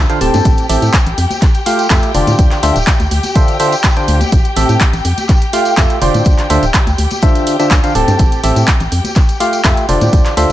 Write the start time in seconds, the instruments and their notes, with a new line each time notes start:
Already playing: string section G4 G5
0.10 synth stab D3 D4 F4 C5 F5, closed hi-hat, tambourine
0.21 fm bass D1, synth stab A2 C4 G4 A4 A5, open hi-hat
0.34 fm bass G2, closed hi-hat, tambourine, high conga
0.45 fm bass A1, kick, closed hi-hat, tambourine
0.57 closed hi-hat, tambourine
0.69 fm bass A1, synth stab A2 C4 G4 A4 E5, open hi-hat
0.82 fm bass A2, closed hi-hat, tambourine
0.94 kick, clap, closed hi-hat, tambourine
1.06 fm bass A1, closed hi-hat, tambourine
1.18 fm bass F2, open hi-hat
1.30 closed hi-hat, tambourine, high conga
1.42 kick, clap, closed hi-hat, tambourine
1.54 closed hi-hat, tambourine
1.66 synth stab A3 F4 G4 F5, open hi-hat
1.79 closed hi-hat, tambourine
1.90 fm bass F2, synth stab A3 F4 G4 E5, kick, clap, closed hi-hat, tambourine
2.03 closed hi-hat, tambourine
2.15 fm bass F1, synth stab D3 D4 F4 C5 D5, open hi-hat
2.27 fm bass A2, closed hi-hat, tambourine, high conga
2.39 fm bass D2, kick, closed hi-hat, tambourine
2.51 clap, closed hi-hat, tambourine
2.63 fm bass D2, synth stab D3 D4 F4 C5 E5, open hi-hat
2.76 fm bass D1, closed hi-hat, tambourine
2.87 kick, clap, closed hi-hat
3.00 fm bass D2, closed hi-hat, tambourine
3.11 fm bass D2, open hi-hat
3.23 closed hi-hat, tambourine, high conga
3.35 synth stab D3 D4 F4 C5 E5, kick, closed hi-hat, tambourine
3.48 closed hi-hat, tambourine
3.60 synth stab D3 D4 F4 C5 E5, open hi-hat
3.72 closed hi-hat, tambourine
3.84 kick, clap, closed hi-hat, tambourine
3.96 synth stab D3 D4 F4 C5 G5, closed hi-hat, tambourine
4.08 fm bass D2, open hi-hat
4.21 closed hi-hat, tambourine, high conga
4.32 fm bass A1, kick, closed hi-hat, tambourine
4.45 closed hi-hat, tambourine
4.56 fm bass A1, synth stab A2 C4 G4 A4 E5, open hi-hat
4.69 fm bass A2, closed hi-hat, tambourine
4.80 kick, clap, closed hi-hat, tambourine
4.93 fm bass A1, closed hi-hat, tambourine
5.05 fm bass F2, open hi-hat
5.18 closed hi-hat, tambourine, high conga
5.29 kick, clap, closed hi-hat, tambourine
5.42 closed hi-hat, tambourine
5.53 synth stab A3 F4 G4 F5, open hi-hat
5.65 closed hi-hat, tambourine
5.77 fm bass F2, synth stab A3 G4 E5, kick, clap, closed hi-hat, tambourine
5.90 closed hi-hat, tambourine
6.02 fm bass F1, synth stab D3 D4 F4 C5 D5, open hi-hat
6.14 fm bass A2, closed hi-hat, tambourine, high conga
6.25 fm bass D2, kick, closed hi-hat, tambourine
6.38 clap, closed hi-hat, tambourine
6.50 fm bass D2, synth stab D3 D4 F4 C5 E5, open hi-hat
6.63 fm bass D1, closed hi-hat, tambourine
6.74 kick, clap, closed hi-hat, tambourine
6.87 fm bass D2, closed hi-hat, tambourine
6.98 fm bass D2, open hi-hat
7.11 closed hi-hat, tambourine, high conga
7.22 synth stab D3 D4 F4 C5 E5, kick, closed hi-hat, tambourine
7.35 closed hi-hat, tambourine
7.47 open hi-hat
7.59 synth stab D3 D4 F4 C5 E5, closed hi-hat, tambourine
7.71 fm bass D2, kick, clap, closed hi-hat, tambourine
7.84 synth stab D3 D4 F4 C5 F5, closed hi-hat, tambourine
7.95 fm bass D1, synth stab A2 C4 G4 A4 A5, open hi-hat
8.08 fm bass G2, closed hi-hat, tambourine, high conga
8.19 fm bass A1, kick, closed hi-hat, tambourine
8.32 closed hi-hat, tambourine
8.43 fm bass A1, synth stab A2 C4 G4 A4 E5, open hi-hat
8.56 fm bass A2, closed hi-hat, tambourine
8.68 kick, clap, closed hi-hat
8.80 fm bass A1, closed hi-hat, tambourine
8.92 fm bass F2, open hi-hat
9.04 closed hi-hat, tambourine, high conga
9.15 kick, clap, closed hi-hat, tambourine
9.29 closed hi-hat, tambourine
9.40 synth stab A3 F4 G4 F5, open hi-hat
9.53 closed hi-hat, tambourine
9.65 fm bass F2, synth stab A3 F4 G4 E5, kick, clap, closed hi-hat, tambourine
9.77 closed hi-hat, tambourine
9.89 fm bass F1, synth stab D3 D4 F4 C5 D5, open hi-hat
10.01 fm bass A2, closed hi-hat, tambourine, high conga
10.13 fm bass D2, kick, closed hi-hat, tambourine
10.25 clap, closed hi-hat, tambourine
10.37 fm bass D2, synth stab D3 D4 F4 C5 E5, open hi-hat